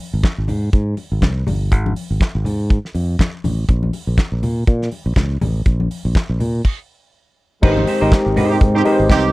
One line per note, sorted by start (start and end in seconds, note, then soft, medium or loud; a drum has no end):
0.13 0.22 G#1 medium
0.23 kick loud
0.23 snare loud
0.23 clap medium
0.23 closed hi-hat medium
0.23 muted conga soft
0.23 high conga soft
0.38 0.50 G#1 medium
0.48 0.69 G#2 medium
0.48 open hi-hat medium
0.48 muted conga soft
0.48 low conga medium
0.73 0.93 G#2 medium
0.73 kick loud
0.73 closed hi-hat medium
0.73 muted conga soft
0.97 open hi-hat soft
0.97 muted conga soft
1.12 1.21 G#1 medium
1.22 1.43 C2 medium
1.22 kick loud
1.22 snare loud
1.22 clap medium
1.22 closed hi-hat medium
1.22 high conga medium
1.47 1.72 G1 medium
1.47 open hi-hat medium
1.47 muted conga soft
1.47 high conga medium
1.47 low conga medium
1.72 1.92 G#1 loud
1.72 kick loud
1.72 closed hi-hat medium
1.86 high conga medium
1.96 open hi-hat medium
2.10 2.19 G#1 medium
2.21 kick loud
2.21 snare medium
2.21 clap medium
2.21 closed hi-hat medium
2.21 high conga soft
2.35 2.44 G#1 medium
2.45 2.77 G#2 loud
2.45 open hi-hat medium
2.45 low conga medium
2.70 kick loud
2.70 closed hi-hat medium
2.70 muted conga soft
2.85 snare soft
2.94 3.15 F2 medium
2.94 open hi-hat medium
2.94 muted conga soft
3.19 kick loud
3.19 snare loud
3.19 clap medium
3.19 closed hi-hat medium
3.19 muted conga soft
3.19 high conga medium
3.44 3.65 A1 medium
3.44 open hi-hat medium
3.44 muted conga soft
3.44 high conga medium
3.44 low conga medium
3.69 3.89 A#1 medium
3.69 kick loud
3.69 closed hi-hat medium
3.69 muted conga soft
3.83 high conga medium
3.93 open hi-hat medium
3.93 muted conga soft
4.07 4.16 A#1 medium
4.18 kick loud
4.18 snare medium
4.18 clap medium
4.18 closed hi-hat medium
4.18 muted conga soft
4.18 high conga soft
4.32 4.41 A#1 medium
4.43 4.63 A#2 medium
4.43 open hi-hat medium
4.43 low conga medium
4.67 4.88 A#2 medium
4.67 kick loud
4.67 closed hi-hat medium
4.67 muted conga soft
4.82 snare soft
4.91 open hi-hat medium
4.91 muted conga soft
5.06 5.15 A#1 medium
5.16 5.37 C#2 medium
5.16 kick loud
5.16 snare loud
5.16 clap medium
5.16 closed hi-hat medium
5.16 muted conga soft
5.16 high conga medium
5.41 5.62 A1 medium
5.41 open hi-hat medium
5.41 muted conga soft
5.41 high conga medium
5.41 low conga medium
5.66 5.86 A#1 medium
5.66 kick loud
5.66 closed hi-hat medium
5.80 high conga medium
5.91 open hi-hat medium
6.05 6.14 A#1 medium
6.15 kick loud
6.15 snare medium
6.15 clap medium
6.15 closed hi-hat medium
6.15 muted conga soft
6.15 high conga soft
6.29 6.38 A#1 loud
6.40 6.61 A#2 loud
6.40 open hi-hat medium
6.40 low conga medium
6.65 kick medium
6.65 crash medium
7.62 7.83 G#1 loud
7.62 9.32 D#3 medium
7.62 7.89 G#3 medium
7.62 9.32 G#3 medium
7.62 9.32 C4 medium
7.62 7.90 D#4 medium
7.62 7.84 D#4 medium
7.62 9.32 G4 medium
7.62 7.90 G4 medium
7.62 7.84 G4 medium
7.62 7.90 A#4 medium
7.62 7.90 C5 loud
7.62 7.84 C5 loud
7.62 kick loud
7.62 crash loud
7.77 high conga loud
7.87 8.01 D#4 medium
7.87 8.01 G4 medium
7.87 8.00 C5 medium
7.87 open hi-hat medium
7.87 muted conga soft
8.01 8.10 G#1 medium
8.01 8.62 G#3 medium
8.01 8.62 D#4 medium
8.01 8.14 D#4 medium
8.01 8.62 G4 medium
8.01 8.14 G4 medium
8.01 8.62 A#4 medium
8.01 8.13 C5 medium
8.01 8.62 D#5 medium
8.12 kick loud
8.12 snare loud
8.12 clap medium
8.12 closed hi-hat medium
8.25 8.38 G#1 medium
8.25 muted clean electric guitar stroke soft
8.36 8.57 G#2 medium
8.36 8.57 D#4 medium
8.36 8.50 G4 medium
8.36 8.49 C5 medium
8.36 open hi-hat medium
8.36 muted conga soft
8.36 low conga medium
8.50 8.57 C4 medium
8.50 8.57 D#4 medium
8.50 8.57 G4 medium
8.50 muted clean electric guitar stroke soft
8.61 8.81 G#2 loud
8.61 muted clean electric guitar stroke soft
8.61 kick loud
8.61 closed hi-hat medium
8.61 muted conga soft
8.61 low conga medium
8.74 8.81 C4 medium
8.74 8.81 D#4 medium
8.74 8.84 D#4 medium
8.74 8.81 G4 medium
8.74 8.85 G4 medium
8.74 8.85 C5 medium
8.85 9.32 G#3 medium
8.85 9.32 D#4 medium
8.85 9.00 D#4 medium
8.85 9.32 G4 medium
8.85 8.99 G4 medium
8.85 9.32 A#4 medium
8.85 8.93 B4 medium
8.85 8.98 C5 medium
8.85 open hi-hat medium
8.85 muted conga soft
8.92 9.32 C5 loud
8.99 9.08 G#1 loud
8.99 muted clean electric guitar stroke soft
9.10 9.30 C2 medium
9.10 9.32 C4 loud
9.10 9.32 D#4 loud
9.10 9.32 G4 loud
9.10 kick loud
9.10 snare loud
9.10 clap loud
9.10 closed hi-hat medium
9.10 high conga medium
9.23 muted clean electric guitar stroke soft